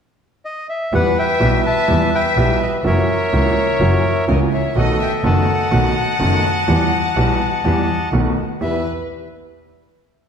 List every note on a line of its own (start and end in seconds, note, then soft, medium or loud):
0.45 0.67 D#5 medium
0.69 0.94 E5 medium
0.92 1.13 E2 medium
0.92 1.13 E3 medium
0.92 1.13 G3 soft
0.92 1.13 B3 soft
0.92 1.13 G4 medium
0.92 1.15 B4 medium
0.92 1.17 B4 soft
0.92 1.18 F#5 medium
1.17 2.10 B4 medium
1.17 1.62 E5 medium
1.17 1.65 E5 medium
1.17 1.62 G5 medium
1.40 1.60 B1 medium
1.40 1.61 B1 medium
1.40 1.60 B2 medium
1.40 1.60 E3 medium
1.40 1.60 G3 soft
1.40 1.61 B3 medium
1.40 1.61 G4 medium
1.64 2.09 E5 medium
1.64 2.13 E5 medium
1.64 2.15 A5 medium
1.88 2.09 E2 medium
1.88 2.09 E3 medium
1.88 2.08 G3 medium
1.88 2.09 B3 soft
1.88 2.09 G4 medium
2.13 2.82 B4 medium
2.13 2.57 E5 medium
2.13 2.82 E5 medium
2.13 2.58 G5 medium
2.36 2.57 B1 medium
2.36 2.57 B2 medium
2.36 2.57 E3 soft
2.36 2.57 G3 soft
2.36 2.57 B3 medium
2.36 2.57 G4 medium
2.61 2.71 B4 medium
2.61 2.73 D#5 medium
2.84 3.04 F#1 medium
2.84 3.04 F#2 medium
2.84 3.04 E3 medium
2.84 3.05 F#3 medium
2.84 3.04 A#3 medium
2.84 3.05 C#4 medium
2.84 3.05 F#4 medium
2.84 4.25 A#4 medium
2.84 4.24 C#5 medium
2.84 4.25 C#5 medium
2.84 4.25 E5 medium
3.33 3.53 C#2 medium
3.33 3.53 C#3 medium
3.33 3.53 E3 medium
3.33 3.53 A#3 medium
3.33 3.53 C#4 soft
3.33 3.53 F#4 medium
3.80 4.00 F#1 medium
3.80 4.00 F#2 medium
3.80 4.00 E3 medium
3.80 4.00 F#3 medium
3.80 4.01 A#3 medium
3.80 4.00 C#4 soft
3.80 4.01 F#4 medium
4.28 4.48 C#2 medium
4.28 4.48 C#3 medium
4.28 4.48 E3 medium
4.28 4.48 A#3 soft
4.28 4.48 C#4 soft
4.28 4.48 F#4 medium
4.28 4.39 A#4 medium
4.28 4.41 D#5 medium
4.52 4.74 C#5 medium
4.52 4.75 E5 medium
4.75 4.96 B1 medium
4.75 4.96 B2 medium
4.75 4.96 D#3 medium
4.75 4.96 A3 medium
4.75 4.96 B3 medium
4.75 4.96 F#4 medium
4.75 5.69 A4 medium
4.75 4.99 D#5 medium
4.75 5.24 D#5 medium
4.75 4.99 F#5 medium
5.00 5.11 E5 medium
5.00 5.12 G5 medium
5.24 5.44 F#1 medium
5.24 5.44 F#2 medium
5.24 5.44 D#3 medium
5.24 5.44 A3 medium
5.24 5.44 B3 medium
5.24 5.44 F#4 medium
5.24 8.09 D#5 medium
5.24 8.09 F#5 medium
5.24 8.09 F#5 soft
5.24 8.09 A5 medium
5.71 5.92 B1 medium
5.71 5.92 B2 medium
5.71 5.92 D#3 medium
5.71 5.92 A3 medium
5.71 5.92 B3 medium
5.71 5.92 F#4 medium
6.20 6.40 F#1 medium
6.20 6.40 F#2 medium
6.20 6.40 D#3 medium
6.20 6.40 A3 soft
6.20 6.40 B3 medium
6.20 6.40 F#4 medium
6.68 6.88 E2 medium
6.68 6.88 E3 medium
6.68 6.88 G3 medium
6.68 6.88 B3 medium
6.68 6.89 G4 medium
7.16 7.36 B1 medium
7.16 7.36 B2 medium
7.16 7.36 E3 medium
7.16 7.36 G3 medium
7.16 7.36 B3 medium
7.16 7.36 G4 medium
7.64 7.84 E2 medium
7.64 7.85 E2 medium
7.64 7.85 E3 medium
7.64 7.85 G3 medium
7.64 7.85 B3 medium
7.64 7.85 G4 medium
8.12 8.33 B1 medium
8.12 8.33 B2 medium
8.12 8.33 D#3 medium
8.12 8.33 A3 medium
8.12 8.33 B3 medium
8.12 8.33 F#4 medium
8.60 8.81 E2 soft
8.60 8.81 B3 soft
8.60 8.81 E4 soft
8.60 8.81 G4 soft
8.60 8.83 B4 medium
8.60 8.84 E5 medium